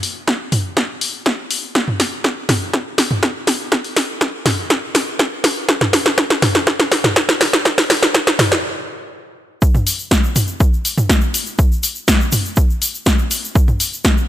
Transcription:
0.03 open hi-hat loud
0.28 kick loud
0.28 snare medium
0.52 mid tom medium
0.52 open hi-hat loud
0.77 kick loud
0.77 snare medium
1.01 open hi-hat loud
1.26 kick loud
1.26 snare medium
1.51 open hi-hat loud
1.75 kick loud
1.75 snare medium
1.88 mid tom medium
2.00 snare medium
2.00 open hi-hat loud
2.24 kick loud
2.24 snare medium
2.49 snare medium
2.49 mid tom medium
2.49 open hi-hat loud
2.73 kick loud
2.73 snare medium
2.98 snare medium
2.98 open hi-hat loud
3.11 mid tom medium
3.23 kick loud
3.23 snare medium
3.47 snare medium
3.47 open hi-hat loud
3.72 kick loud
3.72 snare medium
3.84 open hi-hat medium
3.96 snare medium
3.96 open hi-hat loud
4.21 kick loud
4.21 snare medium
4.46 snare medium
4.46 mid tom medium
4.46 open hi-hat loud
4.70 kick loud
4.70 snare medium
4.95 snare medium
4.95 open hi-hat loud
5.19 kick loud
5.19 snare loud
5.44 snare medium
5.44 open hi-hat loud
5.69 kick loud
5.69 snare medium
5.81 snare medium
5.81 mid tom medium
5.93 snare medium
5.93 open hi-hat loud
6.06 snare medium
6.18 kick loud
6.18 snare loud
6.30 snare medium
6.42 snare medium
6.42 mid tom medium
6.42 open hi-hat loud
6.55 snare medium
6.67 kick loud
6.67 snare medium
6.80 snare medium
6.92 snare loud
6.92 open hi-hat loud
7.04 snare medium
7.04 mid tom medium
7.16 kick loud
7.16 snare loud
7.29 snare medium
7.41 snare loud
7.41 open hi-hat loud
7.53 snare medium
7.65 kick loud
7.65 snare loud
7.78 snare medium
7.78 open hi-hat medium
7.90 snare loud
7.90 open hi-hat loud
8.03 snare medium
8.14 kick loud
8.14 snare loud
8.27 snare medium
8.39 snare loud
8.39 mid tom loud
8.39 open hi-hat loud
8.52 snare medium
9.62 kick loud
9.62 shaker medium
9.75 mid tom medium
9.75 shaker soft
9.87 open hi-hat loud
9.87 shaker medium
9.99 shaker soft
10.11 kick loud
10.11 snare loud
10.11 shaker medium
10.24 shaker soft
10.36 mid tom medium
10.36 open hi-hat loud
10.36 shaker medium
10.47 shaker soft
10.60 kick loud
10.60 shaker medium
10.73 shaker soft
10.85 open hi-hat loud
10.85 shaker medium
10.98 mid tom medium
10.98 shaker soft
11.10 kick loud
11.10 snare loud
11.10 shaker medium
11.21 shaker soft
11.34 open hi-hat loud
11.34 shaker medium
11.46 shaker soft
11.59 kick loud
11.59 shaker medium
11.72 shaker soft
11.83 open hi-hat loud
11.83 shaker medium
11.95 shaker soft
12.08 kick loud
12.08 snare loud
12.08 shaker medium
12.20 shaker soft
12.32 mid tom medium
12.32 open hi-hat loud
12.32 shaker loud
12.45 shaker soft
12.56 kick loud
12.56 shaker medium
12.70 shaker soft
12.82 open hi-hat loud
12.82 shaker loud
12.94 shaker soft
13.06 kick loud
13.06 snare loud
13.06 shaker medium
13.19 shaker soft
13.31 open hi-hat loud
13.31 shaker medium
13.45 shaker soft
13.55 kick loud
13.55 shaker medium
13.68 mid tom medium
13.68 shaker soft
13.80 open hi-hat loud
13.80 shaker medium
13.93 shaker soft
14.04 kick loud
14.04 snare loud
14.04 shaker soft
14.18 shaker soft

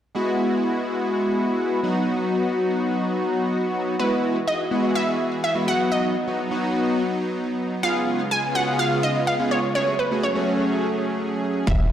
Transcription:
0.15 1.80 G#3 medium
0.15 1.80 B3 medium
0.15 1.80 E4 medium
0.15 1.80 F#4 medium
1.83 3.95 F#3 medium
1.83 3.95 B3 medium
1.83 3.95 D#4 medium
1.83 3.96 F#4 medium
3.99 5.66 E3 medium
3.99 4.37 G#3 medium
3.99 4.37 B3 medium
3.99 7.80 B3 medium
3.99 4.37 E4 medium
3.99 5.66 F#4 medium
3.99 4.38 F#4 medium
3.99 5.66 G#4 medium
3.99 4.49 B4 medium
4.47 4.97 D#5 medium
4.71 5.16 G#3 medium
4.71 5.16 B3 medium
4.71 5.16 E4 medium
4.71 5.16 F#4 medium
4.95 5.40 E5 loud
5.44 5.68 E5 medium
5.55 5.67 G#3 medium
5.55 5.66 B3 medium
5.55 5.67 E4 medium
5.55 5.66 F#4 medium
5.67 6.15 F#3 medium
5.67 7.81 F#3 medium
5.67 6.15 B3 medium
5.67 6.15 D#4 medium
5.67 7.81 D#4 medium
5.67 6.15 F#4 medium
5.67 5.92 F#5 loud
5.92 6.59 D#5 medium
6.27 6.40 F#3 medium
6.27 6.40 B3 medium
6.27 6.40 D#4 medium
6.27 6.40 F#4 medium
6.51 7.02 F#3 medium
6.51 7.02 B3 medium
6.51 7.02 D#4 medium
6.51 7.02 F#4 loud
7.83 9.73 C#3 medium
7.83 9.73 G#3 medium
7.83 8.21 B3 medium
7.83 9.73 B3 medium
7.83 8.21 C#4 medium
7.83 8.21 F4 medium
7.83 9.73 F4 medium
7.83 8.22 G#4 medium
7.83 8.33 F5 loud
8.31 8.56 G#5 loud
8.55 9.00 B3 medium
8.55 9.00 C#4 medium
8.55 9.00 F4 medium
8.55 9.00 G#4 medium
8.55 8.78 F#5 loud
8.79 9.02 F5 loud
9.03 9.26 D#5 medium
9.27 9.52 F5 medium
9.39 9.58 B3 medium
9.39 9.58 C#4 medium
9.39 9.58 F4 medium
9.39 9.58 G#4 medium
9.51 9.74 C#5 medium
9.75 11.65 F#3 medium
9.75 9.94 A3 medium
9.75 11.65 A3 medium
9.75 9.94 C#4 medium
9.75 11.65 C#4 medium
9.75 9.94 F#4 medium
9.75 11.92 G#4 medium
9.75 9.94 G#4 medium
9.75 9.86 C#5 medium
9.99 10.24 B4 medium
10.11 10.24 A3 medium
10.11 10.24 C#4 medium
10.11 10.24 F#4 medium
10.11 10.24 G#4 medium
10.23 11.15 C#5 medium
10.35 10.86 A3 medium
10.35 10.86 C#4 medium
10.35 10.86 F#4 medium
10.35 10.86 G#4 medium
11.67 11.92 E1 loud
11.67 11.92 E3 medium
11.67 11.92 B3 medium
11.67 11.92 E4 medium
11.67 11.92 F#4 medium
11.67 11.92 G#4 medium
11.67 11.92 E5 loud
11.67 kick loud

